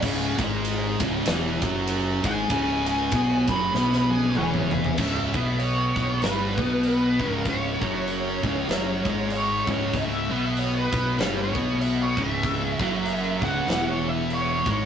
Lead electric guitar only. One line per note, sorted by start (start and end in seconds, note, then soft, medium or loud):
2.26 2.50 G#5 loud
2.51 2.86 G#5 loud
2.87 3.47 G#5 loud
3.49 4.09 B5 medium
4.11 4.36 G#5 loud
4.37 4.72 C#5 medium
4.37 4.97 G#5 loud
4.72 5.59 E5 loud
5.59 6.23 C#5 medium
6.23 6.85 B4 medium
6.86 7.27 B4 medium
7.27 7.43 A#4 medium
7.49 9.31 C#5 medium
9.32 9.69 C#5 medium
9.70 9.96 C#5 medium
9.96 10.59 E5 loud
10.59 10.76 C#5 medium
10.76 11.20 B4 medium
11.21 11.38 C#5 loud
11.40 11.81 C#5 medium
11.82 12.02 E5 medium
12.02 12.21 C#5 loud
12.22 13.45 E5 loud
13.43 13.67 F#5 loud
13.70 13.87 F#5 loud
13.89 14.08 C#5 medium
14.08 14.33 E5 loud
14.34 14.69 C#5 medium
14.71 14.85 C#5 medium